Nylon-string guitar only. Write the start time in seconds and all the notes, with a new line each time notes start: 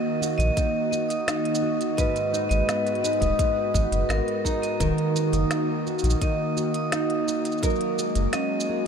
Already playing: D#3 D#4 F#4 A#4
0.21 F#4
0.56 D#4
0.92 F#4
1.27 D#4
1.62 F#4
1.97 G#2 B4
2.33 D#4
2.68 B3
3.04 D#4
3.39 B3
3.74 D#4
4.09 B3
4.45 D#4
4.80 D#3 A#4
5.15 F#4
5.51 D#4
5.87 F#4
6.22 D#4
6.57 F#4
6.92 D#4
7.28 F#4
7.63 F#3 A#4
7.98 G#4
8.34 C#4
8.69 G#4